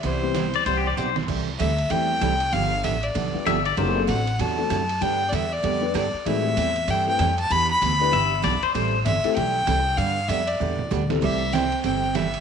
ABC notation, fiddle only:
X:1
M:4/4
L:1/16
Q:"Swing" 1/4=193
K:C
V:1 name="Fiddle"
c12 z4 | z4 e4 g8 | f4 e2 d8 z2 | z4 ^f4 a8 |
g3- g/2 d/2 e2 d6 d4 | e8 g2 g4 a2 | b2 b12 z2 | z4 e4 g8 |
f4 e2 d8 z2 | e4 g4 g4 e4 |]